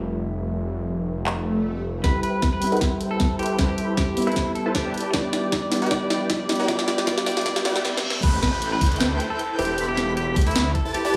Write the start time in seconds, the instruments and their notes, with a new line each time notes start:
Already playing: detuned saw bass F1, grand piano G3 A3 C4 E4
1.26 clap, swell
2.02 grand piano G3 C4, supersaw synth E4 A4 B4 C5 G5, clean electric guitar B4, kick, snare, closed hi-hat, riser
2.06 grand piano E4
2.23 clean electric guitar B4, closed hi-hat
2.42 kick, snare, closed hi-hat
2.53 clean electric guitar B4
2.60 grand piano G3 C4 E4, open hi-hat
2.67 closed hi-hat
2.72 supersaw synth E4 A4 B4 C5 G5, closed hi-hat
2.77 closed hi-hat
2.81 kick, snare, closed hi-hat
3.01 closed hi-hat
3.11 clean electric guitar A4
3.20 kick, snare, closed hi-hat
3.39 supersaw synth E4 A4 B4 C5 G5, clean electric guitar G4, closed hi-hat
3.43 closed hi-hat
3.46 closed hi-hat
3.57 grand piano G3 C4 E4, supersaw synth E4 A4 B4 C5 B5, kick, snare, closed hi-hat
3.69 clean electric guitar G4
3.78 closed hi-hat
3.97 clean electric guitar G4, kick, snare, closed hi-hat
4.15 grand piano G3 B3 C4 E4, open hi-hat
4.22 closed hi-hat
4.27 supersaw synth E4 A4 B4 C5 E5, clean electric guitar E4, closed hi-hat
4.32 closed hi-hat
4.36 kick, snare, closed hi-hat
4.55 clean electric guitar A4, closed hi-hat
4.66 supersaw synth E4 A4 B4 C5 A5
4.75 clean electric guitar G4, kick, snare, closed hi-hat
4.85 supersaw synth E4 G4 B4 D5 A5
4.94 closed hi-hat
4.98 closed hi-hat
5.01 closed hi-hat
5.12 grand piano G3 B3 D4 E4, supersaw synth E4 G4 B4 D5 G5, clean electric guitar D5, kick, snare, closed hi-hat
5.33 clean electric guitar D5, snare, closed hi-hat
5.52 kick, snare, closed hi-hat
5.62 clean electric guitar D5
5.70 grand piano G3 B3 D4 E4, snare, open hi-hat
5.77 closed hi-hat
5.82 supersaw synth E4 G4 B4 D5 G5, closed hi-hat
5.86 grand piano G3 B3, closed hi-hat
5.91 grand piano D4 E4, supersaw synth E4 G4 D5 G5, clean electric guitar D5, kick, snare, closed hi-hat
6.10 clean electric guitar D5, snare, closed hi-hat
6.30 kick, snare, closed hi-hat
6.40 clean electric guitar D5
6.47 grand piano G3 B3 D4 E4, snare, closed hi-hat
6.52 closed hi-hat
6.56 supersaw synth E4 G4 B4 D5 G5, closed hi-hat
6.66 grand piano G3 B3 D4, supersaw synth G4 G5, clean electric guitar D5, kick, snare, closed hi-hat
6.70 grand piano E4
6.79 snare
6.88 clean electric guitar D5, snare, closed hi-hat
6.98 snare
7.05 grand piano G3 B3 D4 E4, supersaw synth E4 G4 B4 D5 G5, clean electric guitar D5, kick, snare, closed hi-hat
7.18 snare
7.26 clean electric guitar D5, snare, open hi-hat
7.32 closed hi-hat
7.37 snare, closed hi-hat
7.41 grand piano G3 B3, closed hi-hat
7.46 grand piano D4 E4, supersaw synth E4 G4 B4 D5 G5, clean electric guitar D5, kick, snare, closed hi-hat, reverse cymbal
7.56 snare
7.63 grand piano G3 B3 D4 E4, supersaw synth E4 G4 B4 D5 G5, clean electric guitar D5, snare, closed hi-hat
7.76 snare
7.85 snare
7.97 snare
8.10 snare
8.23 detuned saw bass A1, supersaw synth E4 A4 B4 C5 G5, clean electric guitar B4, digital synth lead G6, kick, closed hi-hat, crash, downlifter
8.43 clean electric guitar B4, kick, snare, closed hi-hat
8.62 closed hi-hat
8.72 clean electric guitar B4
8.81 detuned saw bass D2, kick, open hi-hat
8.86 closed hi-hat
8.92 supersaw synth E4 A4 B4 C5 G5, digital synth lead G6, closed hi-hat
8.96 closed hi-hat
9.00 snare, closed hi-hat
9.20 closed hi-hat
9.30 clean electric guitar A4
9.39 closed hi-hat
9.59 detuned saw bass E1, supersaw synth E4 A4 B4 C5 G5, clean electric guitar G4, digital synth lead G6, closed hi-hat
9.62 closed hi-hat
9.65 closed hi-hat
9.78 supersaw synth E4 A4 B4 C5 B5, digital synth lead B6, closed hi-hat
9.89 clean electric guitar G4
9.97 snare, closed hi-hat
10.17 clean electric guitar G4, closed hi-hat
10.36 detuned saw bass D2, kick, open hi-hat
10.41 closed hi-hat
10.46 supersaw synth E4 A4 B4 C5 E5, clean electric guitar E4, digital synth lead E6, closed hi-hat
10.51 closed hi-hat
10.56 snare, closed hi-hat
10.75 clean electric guitar A4, kick, closed hi-hat
10.85 supersaw synth E4 A4 B4 C5 A5, digital synth lead A6
10.94 clean electric guitar G4, closed hi-hat
11.05 supersaw synth E4 G4 B4 D5 A5, digital synth lead A6